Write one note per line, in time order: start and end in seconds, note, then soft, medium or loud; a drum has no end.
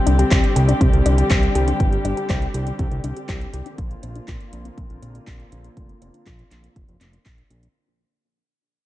0.00 3.75 D3 medium
0.00 3.75 G3 medium
0.00 3.75 C4 medium
0.00 3.74 G4 medium
0.07 0.24 C2 medium
0.07 0.15 D4 loud
0.07 closed hi-hat medium
0.19 0.28 G4 medium
0.19 closed hi-hat soft
0.31 0.40 C2 loud
0.31 0.37 C5 medium
0.31 kick loud
0.31 clap loud
0.31 closed hi-hat soft
0.44 closed hi-hat soft
0.56 0.74 C2 loud
0.56 0.68 G4 medium
0.56 closed hi-hat medium
0.68 0.80 D4 medium
0.68 closed hi-hat soft
0.81 0.90 C2 medium
0.81 0.90 C4 medium
0.81 kick loud
0.81 closed hi-hat soft
0.93 1.02 C2 medium
0.93 closed hi-hat soft
1.06 1.23 C2 loud
1.06 1.15 D4 loud
1.06 closed hi-hat medium
1.18 1.27 G4 medium
1.18 closed hi-hat soft
1.30 1.48 C2 medium
1.30 1.36 C5 medium
1.30 kick loud
1.30 clap loud
1.30 closed hi-hat soft
1.43 closed hi-hat soft
1.55 1.73 C2 medium
1.55 1.67 G4 medium
1.55 closed hi-hat medium
1.68 1.79 D4 medium
1.68 closed hi-hat soft
1.80 1.97 G1 medium
1.80 1.89 C4 medium
1.80 kick loud
1.80 closed hi-hat soft
1.92 closed hi-hat soft
2.05 2.14 G1 medium
2.05 2.14 D4 loud
2.05 closed hi-hat medium
2.17 2.26 G4 medium
2.17 closed hi-hat soft
2.30 2.47 C2 loud
2.30 2.35 C5 medium
2.30 kick loud
2.30 clap loud
2.30 closed hi-hat soft
2.42 closed hi-hat soft
2.54 2.72 C2 medium
2.54 2.66 G4 medium
2.54 closed hi-hat medium
2.67 2.79 D4 medium
2.67 closed hi-hat soft
2.79 2.88 C2 loud
2.79 2.88 C4 medium
2.79 kick loud
2.79 closed hi-hat soft
2.91 3.00 C2 loud
2.91 closed hi-hat soft
3.04 3.13 C2 loud
3.04 3.13 D4 loud
3.04 closed hi-hat medium
3.17 3.25 G4 medium
3.17 closed hi-hat soft
3.29 3.46 C2 medium
3.29 3.34 C5 medium
3.29 kick loud
3.29 clap loud
3.29 closed hi-hat soft
3.41 closed hi-hat soft
3.53 3.62 C2 medium
3.53 3.65 G4 medium
3.53 closed hi-hat medium
3.66 3.78 D4 medium
3.66 closed hi-hat soft
3.78 3.96 A#1 loud
3.78 7.71 D3 medium
3.78 7.71 A#3 medium
3.78 3.87 A#3 medium
3.78 7.71 C4 medium
3.78 7.71 F4 medium
3.78 kick loud
3.78 closed hi-hat medium
3.91 closed hi-hat soft
4.03 4.21 A#1 medium
4.03 4.12 C4 loud
4.03 closed hi-hat medium
4.16 4.25 D4 medium
4.16 closed hi-hat soft
4.28 4.37 A#1 loud
4.28 4.33 F4 medium
4.28 kick loud
4.28 clap loud
4.28 closed hi-hat soft
4.40 closed hi-hat soft
4.53 4.70 A#1 loud
4.53 4.65 D4 medium
4.53 closed hi-hat medium
4.65 4.77 C4 medium
4.65 closed hi-hat soft
4.78 4.86 A#1 medium
4.78 4.87 A#3 medium
4.78 kick loud
4.78 closed hi-hat soft
4.90 4.99 A#1 medium
4.90 closed hi-hat soft
5.02 5.20 A#1 loud
5.02 5.11 C4 loud
5.02 closed hi-hat medium
5.15 5.24 D4 medium
5.15 closed hi-hat soft
5.27 5.45 A#1 medium
5.27 5.33 F4 medium
5.27 kick loud
5.27 clap loud
5.27 closed hi-hat soft
5.40 closed hi-hat soft
5.52 5.69 A#1 loud
5.52 5.64 D4 medium
5.52 closed hi-hat medium
5.64 5.76 C4 medium
5.64 closed hi-hat medium
5.77 5.94 F1 medium
5.77 5.86 A#3 medium
5.77 kick loud
5.77 closed hi-hat medium
5.89 closed hi-hat soft
6.02 6.10 F1 medium
6.02 6.11 C4 loud
6.02 closed hi-hat medium
6.14 6.23 D4 medium
6.14 closed hi-hat medium
6.26 6.44 A#1 loud
6.26 6.32 F4 medium
6.26 kick loud
6.26 clap loud
6.26 closed hi-hat soft
6.39 closed hi-hat soft
6.51 6.69 A#1 medium
6.51 6.63 D4 medium
6.51 clap medium
6.51 closed hi-hat medium
6.64 6.75 C4 medium
6.64 closed hi-hat medium
6.76 6.85 F1 loud
6.76 6.85 A#3 medium
6.76 kick loud
6.76 closed hi-hat medium
6.89 6.97 F1 medium
6.89 closed hi-hat soft
7.01 7.18 F1 medium
7.01 7.10 C4 loud
7.01 clap medium
7.01 closed hi-hat medium
7.13 7.22 D4 medium
7.13 closed hi-hat soft
7.26 7.43 A#1 medium
7.26 7.31 F4 medium
7.26 kick loud
7.26 clap loud
7.26 closed hi-hat medium
7.38 closed hi-hat soft
7.50 7.68 A#1 medium
7.50 7.62 D4 medium
7.50 closed hi-hat medium
7.63 7.75 C4 medium
7.63 closed hi-hat medium